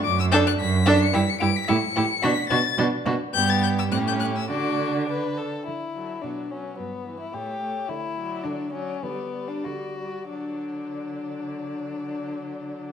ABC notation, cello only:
X:1
M:2/4
L:1/8
Q:1/4=106
K:D
V:1 name="Cello" clef=bass
F,,2 F,,2 | G,, G,, A,, A,, | B,, B,, B,, B,, | G,,2 A,,2 |
D,3 z | D,2 B,,2 | G,,2 A,,2 | D,2 D,2 |
D,2 D,2 | D,4- | D,4 |]